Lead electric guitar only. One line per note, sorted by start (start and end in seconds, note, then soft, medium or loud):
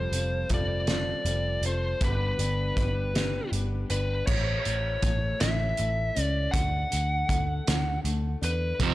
0.00 0.48 C5 medium
0.54 1.66 D5 loud
1.66 2.04 C5 medium
2.04 3.50 B4 medium
3.90 4.26 B4 medium
4.27 5.40 C#5 medium
5.41 6.22 E5 medium
6.22 6.58 D5 medium
6.51 8.00 F#5 loud
8.44 8.82 B4 medium
8.84 8.94 C5 medium